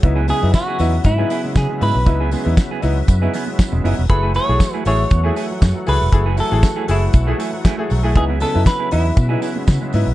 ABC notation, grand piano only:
X:1
M:4/4
L:1/16
Q:1/4=118
K:F#dor
V:1 name="Grand piano"
[B,DE] z [C,G,] [B,DE] z2 [B,DE] z2 [B,DE] z [C,G,] [DE] [C,G,] [B,DE] z | [B,DE] z [C,G,] [B,DE] z2 [B,DE] z2 [B,DE] z [C,G,] [DE] [C,G,] [B,DE] z | [A,EG] z F, [A,EG] z2 [A,EG] z2 [A,EG] z F, [EG] F, [A,EG] z | [A,EG] z F, [A,EG] z2 [A,EG] z2 [A,EG] z F, z [A,EG] F, [A,EG] |
[B,DE] z [C,G,] [B,DE] z2 [B,DE] z2 [B,DE] z [C,G,] [DE] [C,G,] [B,DE] z |]